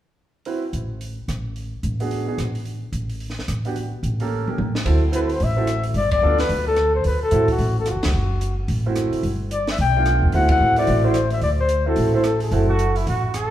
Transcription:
0.45 grand piano C4 E4 F#4 B4, open hi-hat
0.73 upright bass A1, closed hi-hat
1.01 open hi-hat
1.28 upright bass A1, cross-stick, closed hi-hat
1.56 open hi-hat
1.83 upright bass A1, closed hi-hat
2.00 grand piano B3 D4 F#4 G#4, open hi-hat
2.11 open hi-hat
2.27 grand piano B3 D4 F#4 G#4
2.38 upright bass A1, cross-stick, closed hi-hat
2.55 open hi-hat
2.66 open hi-hat
2.92 upright bass A1, closed hi-hat
3.10 open hi-hat
3.20 open hi-hat
3.30 snare
3.39 snare
3.48 upright bass A1, cross-stick, closed hi-hat
3.65 grand piano B3 D4 F#4 G4, open hi-hat
3.76 open hi-hat
4.03 upright bass A1, closed hi-hat
4.20 grand piano A#3 C#4 G4 A4, open hi-hat
4.48 grand piano A#3 C#4 G4 A#4, mid tom
4.58 upright bass A1, mid tom
4.75 snare
4.85 upright bass D2, grand piano C4 E4 F#4 A4, kick, ride
5.12 grand piano C4 E4 F#4 A4, flugelhorn B4, closed hi-hat
5.27 flugelhorn B4, open hi-hat
5.32 flugelhorn C5
5.40 upright bass A1, flugelhorn E5, open hi-hat
5.57 grand piano C4 E4 F#4 A4
5.67 cross-stick, closed hi-hat
5.83 open hi-hat
5.94 upright bass G1, flugelhorn D5, open hi-hat
6.11 flugelhorn D5, kick, ride
6.22 upright bass D2, grand piano B3 D4 F4 A4
6.38 flugelhorn B4, snare, open hi-hat
6.49 upright bass D2, open hi-hat
6.68 flugelhorn A4
6.76 cross-stick, closed hi-hat
6.95 flugelhorn C5
7.04 upright bass D2, flugelhorn B4, open hi-hat
7.23 flugelhorn A4
7.31 upright bass A2, grand piano A3 C4 E4 F#4, closed hi-hat
7.48 flugelhorn F#4, kick, open hi-hat
7.58 upright bass A1, open hi-hat
7.80 flugelhorn A4
7.86 flugelhorn F4 F#4, cross-stick, closed hi-hat
7.95 upright bass C2
8.03 upright bass C#2, flugelhorn F#4, snare, ride
8.13 upright bass F#1
8.41 closed hi-hat
8.68 upright bass A1, open hi-hat
8.86 grand piano A3 C4 E4 F#4
8.96 cross-stick, closed hi-hat
9.12 muted upright bass stroke, open hi-hat
9.23 upright bass G1, open hi-hat
9.51 flugelhorn D5, closed hi-hat
9.67 flugelhorn E5, snare, open hi-hat
9.78 upright bass B1, flugelhorn G5, open hi-hat
9.96 grand piano A3 B3 D4 F4
10.06 cross-stick, closed hi-hat
10.22 upright bass D#2
10.32 upright bass D2, grand piano A3 C4 E4 F#4, flugelhorn F#5, open hi-hat
10.49 flugelhorn F#5, kick, ride
10.60 upright bass A2
10.76 grand piano A3 C4 E4 F#4, flugelhorn D5, open hi-hat
10.87 upright bass A1, open hi-hat
11.04 grand piano A3 C4 E4 F#4, flugelhorn C5
11.14 cross-stick, closed hi-hat
11.30 flugelhorn E5, open hi-hat
11.41 upright bass D2, flugelhorn D5, open hi-hat
11.60 flugelhorn C5
11.69 closed hi-hat
11.86 grand piano A3 C4 E4 F#4, flugelhorn A4
11.96 upright bass A1, open hi-hat
12.13 grand piano A3 C4 E4 A4, flugelhorn C5
12.24 flugelhorn A4, cross-stick, closed hi-hat
12.40 flugelhorn A4, open hi-hat
12.51 upright bass F#1, grand piano A3 C4 E4 F#4, open hi-hat
12.69 trumpet F#4
12.79 closed hi-hat
12.96 trumpet E4, open hi-hat
13.07 upright bass A1, trumpet F#4, open hi-hat
13.34 trumpet A4, cross-stick, closed hi-hat

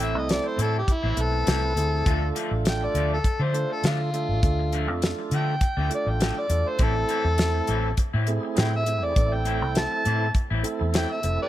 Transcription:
Already playing: fingered electric bass A1, clean electric guitar A2, tonewheel organ A3 C4 E4 A4
0.00 clean electric guitar E3 C4 E4, harmonica E5, closed hi-hat
0.15 fingered electric bass C2, harmonica D#5, muted clean electric guitar stroke
0.29 harmonica D5, snare, closed hi-hat
0.44 harmonica C5, muted clean electric guitar stroke
0.57 clean electric guitar A2 E3 C4 E4, fingered electric bass A2, closed hi-hat
0.62 harmonica A4
0.78 harmonica G4
0.87 muted clean electric guitar stroke, kick, closed hi-hat
0.92 harmonica E4
1.03 fingered electric bass A1, clean electric guitar A2 E3 C4 E4
1.16 fingered electric bass B1, tonewheel organ A3 C4 E4 B4, muted clean electric guitar stroke, closed hi-hat
1.22 harmonica A4
1.32 muted clean electric guitar stroke
1.46 fingered electric bass C2, clean electric guitar A2 E3 C4 E4, snare, closed hi-hat
1.62 muted clean electric guitar stroke
1.76 fingered electric bass D2, tonewheel organ A3 C4 E4 G#4, muted clean electric guitar stroke, closed hi-hat
2.06 fingered electric bass D2, clean electric guitar D3 F3 A3 D4, tonewheel organ A3 D4 F4 A4, kick, closed hi-hat
2.22 muted clean electric guitar stroke
2.35 clean electric guitar D3 F3 A3 D4, closed hi-hat
2.51 fingered electric bass A1, muted clean electric guitar stroke
2.65 harmonica G5, snare, closed hi-hat
2.81 harmonica D5, muted clean electric guitar stroke
2.94 fingered electric bass D2, clean electric guitar D3 F3 A3 D4, closed hi-hat
3.13 harmonica A4
3.24 muted clean electric guitar stroke, kick, closed hi-hat
3.39 fingered electric bass D3, clean electric guitar D3 F3 A3 D4, harmonica C5
3.54 tonewheel organ A3 D4 F4 A4, muted clean electric guitar stroke, closed hi-hat
3.70 harmonica A4, muted clean electric guitar stroke
3.84 fingered electric bass D3, clean electric guitar D3 F3 A3 D4, harmonica F4, snare, closed hi-hat
4.00 muted clean electric guitar stroke
4.13 tonewheel organ A3 D4 F4 A4, muted clean electric guitar stroke, closed hi-hat
4.29 fingered electric bass A1
4.42 fingered electric bass D2, tonewheel organ A3 D4 F4 A4, kick, closed hi-hat
4.59 muted clean electric guitar stroke
4.72 clean electric guitar D3 F3 A3 D4, closed hi-hat
4.88 fingered electric bass F2, muted clean electric guitar stroke
5.02 snare, closed hi-hat
5.19 muted clean electric guitar stroke
5.31 fingered electric bass D3, clean electric guitar D3 F3 A3, closed hi-hat
5.35 clean electric guitar D4, harmonica G5
5.61 muted clean electric guitar stroke, kick, closed hi-hat
5.77 fingered electric bass D2, clean electric guitar D3 F3 A3 D4
5.90 tonewheel organ A3 D4 F4 A4, muted clean electric guitar stroke, closed hi-hat
5.94 harmonica D5
6.06 fingered electric bass A1, harmonica G5, muted clean electric guitar stroke
6.20 clean electric guitar D3 F3 A3 D4, snare, closed hi-hat
6.36 muted clean electric guitar stroke
6.40 harmonica D5
6.49 fingered electric bass E2, tonewheel organ A3 D4 F4 A4, muted clean electric guitar stroke, closed hi-hat
6.69 harmonica C5
6.79 fingered electric bass A1, clean electric guitar A2 E3 C4 E4, tonewheel organ A3 C4 E4 A4, kick, closed hi-hat
6.83 harmonica A4
6.95 muted clean electric guitar stroke
7.08 clean electric guitar A2 E3 C4 E4, closed hi-hat
7.24 fingered electric bass E2, muted clean electric guitar stroke
7.38 snare, closed hi-hat
7.54 muted clean electric guitar stroke
7.67 fingered electric bass A1, clean electric guitar A2 E3 C4 E4, closed hi-hat
7.97 muted clean electric guitar stroke, kick, closed hi-hat
8.13 fingered electric bass A2, clean electric guitar A2 E3 C4 E4
8.27 tonewheel organ A3 C4 E4 G#4, muted clean electric guitar stroke, closed hi-hat
8.43 muted clean electric guitar stroke
8.56 clean electric guitar A2 E3 C4 E4, fingered electric bass A2, snare, closed hi-hat
8.60 harmonica G5
8.72 harmonica E5, muted clean electric guitar stroke
8.86 tonewheel organ A3 C4 E4 G#4, muted clean electric guitar stroke, closed hi-hat
9.03 fingered electric bass E2, harmonica D5
9.15 fingered electric bass A1, tonewheel organ A3 C4 E4 A4, kick, closed hi-hat
9.32 harmonica G5, muted clean electric guitar stroke
9.45 clean electric guitar A2 E3 C4 E4, closed hi-hat
9.62 fingered electric bass C2, muted clean electric guitar stroke
9.75 harmonica A5, snare, closed hi-hat
9.91 muted clean electric guitar stroke
10.05 clean electric guitar A2 E3 C4 E4, fingered electric bass A2, closed hi-hat
10.34 muted clean electric guitar stroke, kick, closed hi-hat
10.50 fingered electric bass A1, clean electric guitar A2 E3 C4 E4
10.63 tonewheel organ A3 C4 E4 A4, muted clean electric guitar stroke, closed hi-hat
10.79 fingered electric bass E2, muted clean electric guitar stroke
10.93 clean electric guitar A2 E3 C4 E4, harmonica G5, snare, closed hi-hat
11.09 harmonica E5, muted clean electric guitar stroke
11.23 fingered electric bass F1, tonewheel organ A3 C4 E4 A4, muted clean electric guitar stroke, closed hi-hat
11.42 harmonica G4 B4 D5

